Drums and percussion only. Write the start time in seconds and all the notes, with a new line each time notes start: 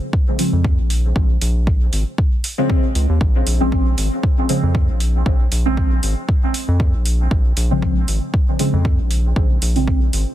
0.13 kick
0.39 open hi-hat
0.64 kick
0.90 open hi-hat
1.16 kick
1.41 open hi-hat
1.67 kick
1.93 open hi-hat
2.18 kick
2.44 open hi-hat
2.70 kick
2.95 open hi-hat
3.21 kick
3.47 open hi-hat
3.72 kick
3.98 open hi-hat
4.23 kick
4.49 open hi-hat
4.75 kick
5.00 open hi-hat
5.26 kick
5.52 open hi-hat
5.77 kick
6.03 open hi-hat
6.29 kick
6.54 open hi-hat
6.80 kick
7.05 open hi-hat
7.31 kick
7.57 open hi-hat
7.82 kick
8.08 open hi-hat
8.34 kick
8.59 open hi-hat
8.85 kick
9.11 open hi-hat
9.36 kick
9.62 open hi-hat
9.76 open hi-hat
9.88 kick
10.13 open hi-hat